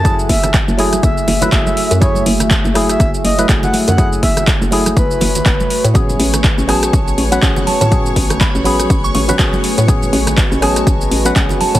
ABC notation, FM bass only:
X:1
M:4/4
L:1/16
Q:"Swing 16ths" 1/4=122
K:F#m
V:1 name="FM bass" clef=bass
F,,2 F,,,3 F,,,3 F,,,2 F,,,2 F,,, z2 F,,- | F,,2 F,,,3 F,,,3 F,,,2 F,,,2 F,,, z2 F,,- | F,,2 F,,,3 F,,,3 F,,,2 F,,,2 F,,, z2 A,,- | A,,2 A,,,3 A,,,3 A,,,2 A,,,2 A,,, z2 A,,- |
A,,2 A,,,3 A,,,3 A,,,2 A,,,2 A,,, z2 A,,- | A,,2 A,,,3 A,,,3 A,,,2 A,,,2 A,,, z2 A,, |]